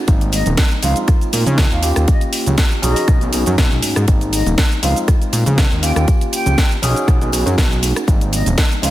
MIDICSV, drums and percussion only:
0, 0, Header, 1, 2, 480
1, 0, Start_track
1, 0, Key_signature, -4, "major"
1, 0, Tempo, 500000
1, 77, Time_signature, 4, 2, 24, 8
1, 8548, End_track
2, 0, Start_track
2, 0, Title_t, "Drums"
2, 74, Note_on_c, 9, 42, 74
2, 77, Note_on_c, 9, 36, 121
2, 80, Note_on_c, 9, 82, 42
2, 170, Note_off_c, 9, 42, 0
2, 173, Note_off_c, 9, 36, 0
2, 176, Note_off_c, 9, 82, 0
2, 204, Note_on_c, 9, 42, 51
2, 206, Note_on_c, 9, 54, 24
2, 210, Note_on_c, 9, 82, 20
2, 300, Note_off_c, 9, 42, 0
2, 302, Note_off_c, 9, 54, 0
2, 306, Note_off_c, 9, 82, 0
2, 309, Note_on_c, 9, 54, 84
2, 313, Note_on_c, 9, 46, 107
2, 319, Note_on_c, 9, 82, 71
2, 405, Note_off_c, 9, 54, 0
2, 409, Note_off_c, 9, 46, 0
2, 415, Note_off_c, 9, 82, 0
2, 440, Note_on_c, 9, 42, 38
2, 441, Note_on_c, 9, 64, 89
2, 442, Note_on_c, 9, 54, 37
2, 446, Note_on_c, 9, 82, 32
2, 536, Note_off_c, 9, 42, 0
2, 537, Note_off_c, 9, 64, 0
2, 538, Note_off_c, 9, 54, 0
2, 542, Note_off_c, 9, 82, 0
2, 547, Note_on_c, 9, 54, 49
2, 552, Note_on_c, 9, 38, 125
2, 552, Note_on_c, 9, 42, 81
2, 557, Note_on_c, 9, 36, 116
2, 557, Note_on_c, 9, 63, 75
2, 558, Note_on_c, 9, 82, 43
2, 643, Note_off_c, 9, 54, 0
2, 648, Note_off_c, 9, 38, 0
2, 648, Note_off_c, 9, 42, 0
2, 653, Note_off_c, 9, 36, 0
2, 653, Note_off_c, 9, 63, 0
2, 654, Note_off_c, 9, 82, 0
2, 682, Note_on_c, 9, 42, 38
2, 684, Note_on_c, 9, 54, 27
2, 688, Note_on_c, 9, 82, 22
2, 778, Note_off_c, 9, 42, 0
2, 780, Note_off_c, 9, 54, 0
2, 784, Note_off_c, 9, 82, 0
2, 790, Note_on_c, 9, 54, 91
2, 792, Note_on_c, 9, 46, 109
2, 798, Note_on_c, 9, 64, 89
2, 798, Note_on_c, 9, 82, 72
2, 886, Note_off_c, 9, 54, 0
2, 888, Note_off_c, 9, 46, 0
2, 894, Note_off_c, 9, 64, 0
2, 894, Note_off_c, 9, 82, 0
2, 920, Note_on_c, 9, 42, 38
2, 925, Note_on_c, 9, 54, 37
2, 926, Note_on_c, 9, 82, 33
2, 1016, Note_off_c, 9, 42, 0
2, 1021, Note_off_c, 9, 54, 0
2, 1022, Note_off_c, 9, 82, 0
2, 1031, Note_on_c, 9, 54, 46
2, 1035, Note_on_c, 9, 37, 65
2, 1035, Note_on_c, 9, 42, 74
2, 1038, Note_on_c, 9, 36, 127
2, 1041, Note_on_c, 9, 82, 44
2, 1127, Note_off_c, 9, 54, 0
2, 1131, Note_off_c, 9, 37, 0
2, 1131, Note_off_c, 9, 42, 0
2, 1134, Note_off_c, 9, 36, 0
2, 1137, Note_off_c, 9, 82, 0
2, 1166, Note_on_c, 9, 42, 34
2, 1166, Note_on_c, 9, 54, 25
2, 1172, Note_on_c, 9, 82, 21
2, 1262, Note_off_c, 9, 42, 0
2, 1262, Note_off_c, 9, 54, 0
2, 1268, Note_off_c, 9, 82, 0
2, 1272, Note_on_c, 9, 54, 85
2, 1276, Note_on_c, 9, 46, 113
2, 1277, Note_on_c, 9, 63, 102
2, 1282, Note_on_c, 9, 82, 78
2, 1368, Note_off_c, 9, 54, 0
2, 1372, Note_off_c, 9, 46, 0
2, 1373, Note_off_c, 9, 63, 0
2, 1378, Note_off_c, 9, 82, 0
2, 1398, Note_on_c, 9, 54, 39
2, 1402, Note_on_c, 9, 64, 106
2, 1406, Note_on_c, 9, 42, 36
2, 1408, Note_on_c, 9, 63, 70
2, 1412, Note_on_c, 9, 82, 32
2, 1494, Note_off_c, 9, 54, 0
2, 1498, Note_off_c, 9, 64, 0
2, 1502, Note_off_c, 9, 42, 0
2, 1504, Note_off_c, 9, 63, 0
2, 1508, Note_off_c, 9, 82, 0
2, 1515, Note_on_c, 9, 38, 119
2, 1515, Note_on_c, 9, 42, 80
2, 1518, Note_on_c, 9, 36, 119
2, 1520, Note_on_c, 9, 54, 51
2, 1521, Note_on_c, 9, 82, 44
2, 1611, Note_off_c, 9, 38, 0
2, 1611, Note_off_c, 9, 42, 0
2, 1614, Note_off_c, 9, 36, 0
2, 1616, Note_off_c, 9, 54, 0
2, 1617, Note_off_c, 9, 82, 0
2, 1651, Note_on_c, 9, 82, 21
2, 1747, Note_off_c, 9, 82, 0
2, 1750, Note_on_c, 9, 54, 89
2, 1753, Note_on_c, 9, 46, 113
2, 1759, Note_on_c, 9, 82, 73
2, 1846, Note_off_c, 9, 54, 0
2, 1849, Note_off_c, 9, 46, 0
2, 1855, Note_off_c, 9, 82, 0
2, 1883, Note_on_c, 9, 37, 69
2, 1883, Note_on_c, 9, 42, 51
2, 1883, Note_on_c, 9, 54, 36
2, 1889, Note_on_c, 9, 82, 34
2, 1979, Note_off_c, 9, 37, 0
2, 1979, Note_off_c, 9, 42, 0
2, 1979, Note_off_c, 9, 54, 0
2, 1985, Note_off_c, 9, 82, 0
2, 1994, Note_on_c, 9, 42, 76
2, 1997, Note_on_c, 9, 36, 121
2, 2000, Note_on_c, 9, 82, 44
2, 2007, Note_on_c, 9, 54, 50
2, 2090, Note_off_c, 9, 42, 0
2, 2093, Note_off_c, 9, 36, 0
2, 2096, Note_off_c, 9, 82, 0
2, 2103, Note_off_c, 9, 54, 0
2, 2124, Note_on_c, 9, 42, 53
2, 2130, Note_on_c, 9, 82, 22
2, 2132, Note_on_c, 9, 54, 24
2, 2220, Note_off_c, 9, 42, 0
2, 2226, Note_off_c, 9, 82, 0
2, 2228, Note_off_c, 9, 54, 0
2, 2232, Note_on_c, 9, 54, 97
2, 2233, Note_on_c, 9, 46, 113
2, 2239, Note_on_c, 9, 82, 78
2, 2328, Note_off_c, 9, 54, 0
2, 2329, Note_off_c, 9, 46, 0
2, 2335, Note_off_c, 9, 82, 0
2, 2365, Note_on_c, 9, 54, 37
2, 2366, Note_on_c, 9, 42, 36
2, 2372, Note_on_c, 9, 82, 33
2, 2377, Note_on_c, 9, 64, 83
2, 2461, Note_off_c, 9, 54, 0
2, 2462, Note_off_c, 9, 42, 0
2, 2468, Note_off_c, 9, 82, 0
2, 2468, Note_on_c, 9, 54, 49
2, 2470, Note_on_c, 9, 63, 87
2, 2473, Note_off_c, 9, 64, 0
2, 2474, Note_on_c, 9, 38, 124
2, 2474, Note_on_c, 9, 42, 82
2, 2477, Note_on_c, 9, 36, 109
2, 2480, Note_on_c, 9, 82, 44
2, 2564, Note_off_c, 9, 54, 0
2, 2566, Note_off_c, 9, 63, 0
2, 2570, Note_off_c, 9, 38, 0
2, 2570, Note_off_c, 9, 42, 0
2, 2573, Note_off_c, 9, 36, 0
2, 2576, Note_off_c, 9, 82, 0
2, 2604, Note_on_c, 9, 42, 36
2, 2609, Note_on_c, 9, 54, 25
2, 2610, Note_on_c, 9, 82, 22
2, 2700, Note_off_c, 9, 42, 0
2, 2705, Note_off_c, 9, 54, 0
2, 2706, Note_off_c, 9, 82, 0
2, 2712, Note_on_c, 9, 64, 87
2, 2716, Note_on_c, 9, 46, 101
2, 2716, Note_on_c, 9, 54, 81
2, 2722, Note_on_c, 9, 82, 72
2, 2808, Note_off_c, 9, 64, 0
2, 2812, Note_off_c, 9, 46, 0
2, 2812, Note_off_c, 9, 54, 0
2, 2818, Note_off_c, 9, 82, 0
2, 2844, Note_on_c, 9, 46, 64
2, 2850, Note_on_c, 9, 82, 33
2, 2852, Note_on_c, 9, 54, 36
2, 2940, Note_off_c, 9, 46, 0
2, 2946, Note_off_c, 9, 82, 0
2, 2948, Note_off_c, 9, 54, 0
2, 2955, Note_on_c, 9, 37, 71
2, 2955, Note_on_c, 9, 42, 73
2, 2955, Note_on_c, 9, 54, 53
2, 2957, Note_on_c, 9, 36, 123
2, 2961, Note_on_c, 9, 82, 43
2, 3051, Note_off_c, 9, 37, 0
2, 3051, Note_off_c, 9, 42, 0
2, 3051, Note_off_c, 9, 54, 0
2, 3053, Note_off_c, 9, 36, 0
2, 3057, Note_off_c, 9, 82, 0
2, 3084, Note_on_c, 9, 42, 36
2, 3087, Note_on_c, 9, 54, 27
2, 3087, Note_on_c, 9, 63, 74
2, 3090, Note_on_c, 9, 82, 21
2, 3180, Note_off_c, 9, 42, 0
2, 3183, Note_off_c, 9, 54, 0
2, 3183, Note_off_c, 9, 63, 0
2, 3186, Note_off_c, 9, 82, 0
2, 3193, Note_on_c, 9, 46, 111
2, 3199, Note_on_c, 9, 82, 73
2, 3200, Note_on_c, 9, 54, 93
2, 3289, Note_off_c, 9, 46, 0
2, 3295, Note_off_c, 9, 82, 0
2, 3296, Note_off_c, 9, 54, 0
2, 3324, Note_on_c, 9, 42, 35
2, 3330, Note_on_c, 9, 82, 35
2, 3333, Note_on_c, 9, 64, 98
2, 3335, Note_on_c, 9, 54, 41
2, 3420, Note_off_c, 9, 42, 0
2, 3426, Note_off_c, 9, 82, 0
2, 3429, Note_off_c, 9, 64, 0
2, 3431, Note_off_c, 9, 54, 0
2, 3437, Note_on_c, 9, 38, 114
2, 3438, Note_on_c, 9, 36, 114
2, 3438, Note_on_c, 9, 42, 76
2, 3444, Note_on_c, 9, 82, 43
2, 3533, Note_off_c, 9, 38, 0
2, 3534, Note_off_c, 9, 36, 0
2, 3534, Note_off_c, 9, 42, 0
2, 3540, Note_off_c, 9, 82, 0
2, 3570, Note_on_c, 9, 82, 21
2, 3573, Note_on_c, 9, 54, 26
2, 3666, Note_off_c, 9, 82, 0
2, 3669, Note_off_c, 9, 54, 0
2, 3672, Note_on_c, 9, 46, 114
2, 3674, Note_on_c, 9, 63, 89
2, 3676, Note_on_c, 9, 54, 90
2, 3678, Note_on_c, 9, 82, 80
2, 3768, Note_off_c, 9, 46, 0
2, 3770, Note_off_c, 9, 63, 0
2, 3772, Note_off_c, 9, 54, 0
2, 3774, Note_off_c, 9, 82, 0
2, 3804, Note_on_c, 9, 37, 70
2, 3804, Note_on_c, 9, 42, 50
2, 3810, Note_on_c, 9, 82, 34
2, 3900, Note_off_c, 9, 37, 0
2, 3900, Note_off_c, 9, 42, 0
2, 3906, Note_off_c, 9, 82, 0
2, 3911, Note_on_c, 9, 54, 50
2, 3914, Note_on_c, 9, 42, 76
2, 3918, Note_on_c, 9, 36, 116
2, 3920, Note_on_c, 9, 82, 46
2, 4007, Note_off_c, 9, 54, 0
2, 4010, Note_off_c, 9, 42, 0
2, 4014, Note_off_c, 9, 36, 0
2, 4016, Note_off_c, 9, 82, 0
2, 4044, Note_on_c, 9, 42, 49
2, 4049, Note_on_c, 9, 54, 26
2, 4050, Note_on_c, 9, 82, 23
2, 4140, Note_off_c, 9, 42, 0
2, 4145, Note_off_c, 9, 54, 0
2, 4146, Note_off_c, 9, 82, 0
2, 4154, Note_on_c, 9, 46, 104
2, 4160, Note_on_c, 9, 54, 88
2, 4161, Note_on_c, 9, 82, 76
2, 4250, Note_off_c, 9, 46, 0
2, 4256, Note_off_c, 9, 54, 0
2, 4257, Note_off_c, 9, 82, 0
2, 4286, Note_on_c, 9, 42, 39
2, 4292, Note_on_c, 9, 54, 36
2, 4292, Note_on_c, 9, 82, 35
2, 4296, Note_on_c, 9, 64, 74
2, 4382, Note_off_c, 9, 42, 0
2, 4388, Note_off_c, 9, 54, 0
2, 4388, Note_off_c, 9, 82, 0
2, 4392, Note_off_c, 9, 64, 0
2, 4395, Note_on_c, 9, 38, 125
2, 4395, Note_on_c, 9, 42, 80
2, 4398, Note_on_c, 9, 36, 103
2, 4401, Note_on_c, 9, 82, 47
2, 4491, Note_off_c, 9, 38, 0
2, 4491, Note_off_c, 9, 42, 0
2, 4494, Note_off_c, 9, 36, 0
2, 4497, Note_off_c, 9, 82, 0
2, 4527, Note_on_c, 9, 42, 37
2, 4531, Note_on_c, 9, 54, 26
2, 4533, Note_on_c, 9, 82, 23
2, 4623, Note_off_c, 9, 42, 0
2, 4627, Note_off_c, 9, 54, 0
2, 4629, Note_off_c, 9, 82, 0
2, 4635, Note_on_c, 9, 46, 101
2, 4641, Note_on_c, 9, 82, 74
2, 4642, Note_on_c, 9, 54, 82
2, 4650, Note_on_c, 9, 64, 77
2, 4731, Note_off_c, 9, 46, 0
2, 4737, Note_off_c, 9, 82, 0
2, 4738, Note_off_c, 9, 54, 0
2, 4746, Note_off_c, 9, 64, 0
2, 4765, Note_on_c, 9, 42, 36
2, 4765, Note_on_c, 9, 54, 40
2, 4771, Note_on_c, 9, 82, 36
2, 4861, Note_off_c, 9, 42, 0
2, 4861, Note_off_c, 9, 54, 0
2, 4867, Note_off_c, 9, 82, 0
2, 4877, Note_on_c, 9, 37, 70
2, 4877, Note_on_c, 9, 42, 78
2, 4878, Note_on_c, 9, 36, 115
2, 4882, Note_on_c, 9, 82, 45
2, 4885, Note_on_c, 9, 54, 45
2, 4973, Note_off_c, 9, 37, 0
2, 4973, Note_off_c, 9, 42, 0
2, 4974, Note_off_c, 9, 36, 0
2, 4978, Note_off_c, 9, 82, 0
2, 4981, Note_off_c, 9, 54, 0
2, 5007, Note_on_c, 9, 42, 35
2, 5013, Note_on_c, 9, 82, 21
2, 5022, Note_on_c, 9, 54, 24
2, 5103, Note_off_c, 9, 42, 0
2, 5109, Note_off_c, 9, 82, 0
2, 5113, Note_off_c, 9, 54, 0
2, 5113, Note_on_c, 9, 54, 83
2, 5115, Note_on_c, 9, 46, 105
2, 5117, Note_on_c, 9, 63, 88
2, 5121, Note_on_c, 9, 82, 81
2, 5209, Note_off_c, 9, 54, 0
2, 5211, Note_off_c, 9, 46, 0
2, 5213, Note_off_c, 9, 63, 0
2, 5217, Note_off_c, 9, 82, 0
2, 5244, Note_on_c, 9, 64, 102
2, 5245, Note_on_c, 9, 42, 36
2, 5245, Note_on_c, 9, 63, 64
2, 5246, Note_on_c, 9, 54, 37
2, 5251, Note_on_c, 9, 82, 33
2, 5340, Note_off_c, 9, 64, 0
2, 5341, Note_off_c, 9, 42, 0
2, 5341, Note_off_c, 9, 63, 0
2, 5342, Note_off_c, 9, 54, 0
2, 5347, Note_off_c, 9, 82, 0
2, 5355, Note_on_c, 9, 38, 110
2, 5355, Note_on_c, 9, 42, 75
2, 5358, Note_on_c, 9, 36, 114
2, 5361, Note_on_c, 9, 82, 43
2, 5451, Note_off_c, 9, 38, 0
2, 5451, Note_off_c, 9, 42, 0
2, 5454, Note_off_c, 9, 36, 0
2, 5457, Note_off_c, 9, 82, 0
2, 5489, Note_on_c, 9, 54, 23
2, 5489, Note_on_c, 9, 82, 22
2, 5585, Note_off_c, 9, 54, 0
2, 5585, Note_off_c, 9, 82, 0
2, 5594, Note_on_c, 9, 54, 84
2, 5595, Note_on_c, 9, 46, 106
2, 5601, Note_on_c, 9, 82, 79
2, 5690, Note_off_c, 9, 54, 0
2, 5691, Note_off_c, 9, 46, 0
2, 5697, Note_off_c, 9, 82, 0
2, 5724, Note_on_c, 9, 37, 71
2, 5724, Note_on_c, 9, 42, 52
2, 5730, Note_on_c, 9, 82, 35
2, 5732, Note_on_c, 9, 54, 40
2, 5820, Note_off_c, 9, 37, 0
2, 5820, Note_off_c, 9, 42, 0
2, 5826, Note_off_c, 9, 82, 0
2, 5828, Note_off_c, 9, 54, 0
2, 5831, Note_on_c, 9, 54, 52
2, 5835, Note_on_c, 9, 42, 76
2, 5837, Note_on_c, 9, 36, 115
2, 5841, Note_on_c, 9, 82, 49
2, 5927, Note_off_c, 9, 54, 0
2, 5931, Note_off_c, 9, 42, 0
2, 5933, Note_off_c, 9, 36, 0
2, 5937, Note_off_c, 9, 82, 0
2, 5965, Note_on_c, 9, 42, 51
2, 5967, Note_on_c, 9, 54, 25
2, 5971, Note_on_c, 9, 82, 22
2, 6061, Note_off_c, 9, 42, 0
2, 6063, Note_off_c, 9, 54, 0
2, 6067, Note_off_c, 9, 82, 0
2, 6075, Note_on_c, 9, 46, 103
2, 6075, Note_on_c, 9, 54, 86
2, 6081, Note_on_c, 9, 82, 86
2, 6171, Note_off_c, 9, 46, 0
2, 6171, Note_off_c, 9, 54, 0
2, 6177, Note_off_c, 9, 82, 0
2, 6202, Note_on_c, 9, 64, 90
2, 6203, Note_on_c, 9, 42, 37
2, 6206, Note_on_c, 9, 54, 40
2, 6209, Note_on_c, 9, 82, 36
2, 6298, Note_off_c, 9, 64, 0
2, 6299, Note_off_c, 9, 42, 0
2, 6302, Note_off_c, 9, 54, 0
2, 6305, Note_off_c, 9, 82, 0
2, 6307, Note_on_c, 9, 63, 78
2, 6313, Note_on_c, 9, 54, 48
2, 6316, Note_on_c, 9, 36, 103
2, 6317, Note_on_c, 9, 38, 115
2, 6317, Note_on_c, 9, 42, 88
2, 6323, Note_on_c, 9, 82, 49
2, 6403, Note_off_c, 9, 63, 0
2, 6409, Note_off_c, 9, 54, 0
2, 6412, Note_off_c, 9, 36, 0
2, 6413, Note_off_c, 9, 38, 0
2, 6413, Note_off_c, 9, 42, 0
2, 6419, Note_off_c, 9, 82, 0
2, 6445, Note_on_c, 9, 42, 36
2, 6445, Note_on_c, 9, 54, 28
2, 6451, Note_on_c, 9, 82, 25
2, 6541, Note_off_c, 9, 42, 0
2, 6541, Note_off_c, 9, 54, 0
2, 6547, Note_off_c, 9, 82, 0
2, 6550, Note_on_c, 9, 64, 83
2, 6554, Note_on_c, 9, 54, 91
2, 6555, Note_on_c, 9, 46, 99
2, 6561, Note_on_c, 9, 82, 78
2, 6646, Note_off_c, 9, 64, 0
2, 6650, Note_off_c, 9, 54, 0
2, 6651, Note_off_c, 9, 46, 0
2, 6657, Note_off_c, 9, 82, 0
2, 6686, Note_on_c, 9, 42, 38
2, 6688, Note_on_c, 9, 54, 39
2, 6691, Note_on_c, 9, 82, 35
2, 6782, Note_off_c, 9, 42, 0
2, 6784, Note_off_c, 9, 54, 0
2, 6787, Note_off_c, 9, 82, 0
2, 6796, Note_on_c, 9, 36, 120
2, 6797, Note_on_c, 9, 37, 66
2, 6797, Note_on_c, 9, 42, 78
2, 6800, Note_on_c, 9, 54, 48
2, 6803, Note_on_c, 9, 82, 48
2, 6892, Note_off_c, 9, 36, 0
2, 6893, Note_off_c, 9, 37, 0
2, 6893, Note_off_c, 9, 42, 0
2, 6896, Note_off_c, 9, 54, 0
2, 6899, Note_off_c, 9, 82, 0
2, 6921, Note_on_c, 9, 54, 24
2, 6923, Note_on_c, 9, 63, 66
2, 6926, Note_on_c, 9, 42, 38
2, 6932, Note_on_c, 9, 82, 22
2, 7017, Note_off_c, 9, 54, 0
2, 7019, Note_off_c, 9, 63, 0
2, 7022, Note_off_c, 9, 42, 0
2, 7028, Note_off_c, 9, 82, 0
2, 7030, Note_on_c, 9, 54, 102
2, 7038, Note_on_c, 9, 46, 105
2, 7044, Note_on_c, 9, 82, 80
2, 7126, Note_off_c, 9, 54, 0
2, 7134, Note_off_c, 9, 46, 0
2, 7140, Note_off_c, 9, 82, 0
2, 7165, Note_on_c, 9, 64, 90
2, 7166, Note_on_c, 9, 54, 42
2, 7168, Note_on_c, 9, 42, 38
2, 7174, Note_on_c, 9, 82, 34
2, 7261, Note_off_c, 9, 64, 0
2, 7262, Note_off_c, 9, 54, 0
2, 7264, Note_off_c, 9, 42, 0
2, 7270, Note_off_c, 9, 82, 0
2, 7276, Note_on_c, 9, 36, 112
2, 7279, Note_on_c, 9, 38, 118
2, 7279, Note_on_c, 9, 42, 81
2, 7285, Note_on_c, 9, 82, 49
2, 7372, Note_off_c, 9, 36, 0
2, 7375, Note_off_c, 9, 38, 0
2, 7375, Note_off_c, 9, 42, 0
2, 7381, Note_off_c, 9, 82, 0
2, 7404, Note_on_c, 9, 54, 28
2, 7414, Note_on_c, 9, 82, 23
2, 7500, Note_off_c, 9, 54, 0
2, 7510, Note_off_c, 9, 82, 0
2, 7512, Note_on_c, 9, 63, 79
2, 7514, Note_on_c, 9, 54, 93
2, 7515, Note_on_c, 9, 46, 104
2, 7521, Note_on_c, 9, 82, 82
2, 7608, Note_off_c, 9, 63, 0
2, 7610, Note_off_c, 9, 54, 0
2, 7611, Note_off_c, 9, 46, 0
2, 7617, Note_off_c, 9, 82, 0
2, 7645, Note_on_c, 9, 37, 68
2, 7645, Note_on_c, 9, 42, 52
2, 7651, Note_on_c, 9, 54, 39
2, 7651, Note_on_c, 9, 82, 36
2, 7741, Note_off_c, 9, 37, 0
2, 7741, Note_off_c, 9, 42, 0
2, 7747, Note_off_c, 9, 54, 0
2, 7747, Note_off_c, 9, 82, 0
2, 7750, Note_on_c, 9, 54, 55
2, 7755, Note_on_c, 9, 36, 111
2, 7756, Note_on_c, 9, 42, 77
2, 7762, Note_on_c, 9, 82, 49
2, 7846, Note_off_c, 9, 54, 0
2, 7851, Note_off_c, 9, 36, 0
2, 7852, Note_off_c, 9, 42, 0
2, 7858, Note_off_c, 9, 82, 0
2, 7882, Note_on_c, 9, 54, 29
2, 7885, Note_on_c, 9, 42, 54
2, 7891, Note_on_c, 9, 82, 24
2, 7978, Note_off_c, 9, 54, 0
2, 7981, Note_off_c, 9, 42, 0
2, 7987, Note_off_c, 9, 82, 0
2, 7992, Note_on_c, 9, 54, 94
2, 7995, Note_on_c, 9, 46, 99
2, 8001, Note_on_c, 9, 82, 82
2, 8088, Note_off_c, 9, 54, 0
2, 8091, Note_off_c, 9, 46, 0
2, 8097, Note_off_c, 9, 82, 0
2, 8124, Note_on_c, 9, 54, 40
2, 8125, Note_on_c, 9, 42, 40
2, 8125, Note_on_c, 9, 64, 80
2, 8131, Note_on_c, 9, 82, 37
2, 8220, Note_off_c, 9, 54, 0
2, 8221, Note_off_c, 9, 42, 0
2, 8221, Note_off_c, 9, 64, 0
2, 8227, Note_off_c, 9, 82, 0
2, 8234, Note_on_c, 9, 38, 127
2, 8234, Note_on_c, 9, 42, 90
2, 8234, Note_on_c, 9, 54, 52
2, 8235, Note_on_c, 9, 36, 101
2, 8237, Note_on_c, 9, 63, 69
2, 8240, Note_on_c, 9, 82, 52
2, 8330, Note_off_c, 9, 38, 0
2, 8330, Note_off_c, 9, 42, 0
2, 8330, Note_off_c, 9, 54, 0
2, 8331, Note_off_c, 9, 36, 0
2, 8333, Note_off_c, 9, 63, 0
2, 8336, Note_off_c, 9, 82, 0
2, 8363, Note_on_c, 9, 54, 28
2, 8367, Note_on_c, 9, 42, 39
2, 8373, Note_on_c, 9, 82, 25
2, 8459, Note_off_c, 9, 54, 0
2, 8463, Note_off_c, 9, 42, 0
2, 8469, Note_off_c, 9, 82, 0
2, 8470, Note_on_c, 9, 64, 83
2, 8478, Note_on_c, 9, 46, 98
2, 8480, Note_on_c, 9, 54, 98
2, 8484, Note_on_c, 9, 82, 80
2, 8548, Note_off_c, 9, 46, 0
2, 8548, Note_off_c, 9, 54, 0
2, 8548, Note_off_c, 9, 64, 0
2, 8548, Note_off_c, 9, 82, 0
2, 8548, End_track
0, 0, End_of_file